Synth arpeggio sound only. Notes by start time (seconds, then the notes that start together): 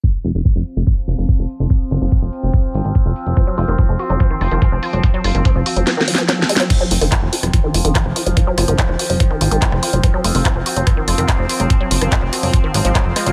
3.37 F3
3.47 F#3
3.58 F4
3.68 D#3
3.79 F3
3.89 F3
3.99 F#4
4.10 F#3
4.20 F3
4.31 D#3
4.41 F4
4.51 D#3
4.62 F3
4.72 F3
4.83 F4
4.93 F#3
5.04 F3
5.14 F#3
5.24 F4
5.35 D#3
5.45 F3
5.56 F3
5.66 F#4
5.76 F#3
5.87 F3
5.97 D#3
6.08 F#3
6.18 F3
6.29 F#3
6.39 F3
6.49 G#3
6.60 F#3
6.70 F3
6.81 F#3
6.91 F4
7.01 D#3
7.12 F3
7.22 F3
7.33 F#4
7.43 F#3
7.54 F3
7.64 D#3
7.74 F4
7.85 D#3
7.95 F3
8.06 F3
8.16 F4
8.26 F#3
8.37 F3
8.47 F#3
8.58 F4
8.68 D#3
8.79 F3
8.89 F3
8.99 F#4
9.10 F#3
9.20 F3
9.31 D#3
9.41 F4
9.51 D#3
9.62 F3
9.72 F3
9.83 F4
9.93 F#3
10.04 F3
10.14 F#3
10.24 F4
10.35 D#3
10.45 F3
10.56 F3
10.66 F#4
10.76 F#3
10.87 F3
10.97 D#3
11.08 F4
11.18 D#3
11.29 F3
11.39 F3
11.49 F4
11.60 F#3
11.70 F3
11.81 F#3
11.91 F4
12.01 D#3
12.12 F3
12.22 F3
12.33 F#4
12.43 F#3
12.54 F3
12.64 D#3
12.74 F#3
12.85 F3
12.95 F#3
13.06 F3
13.16 G#3
13.26 F#3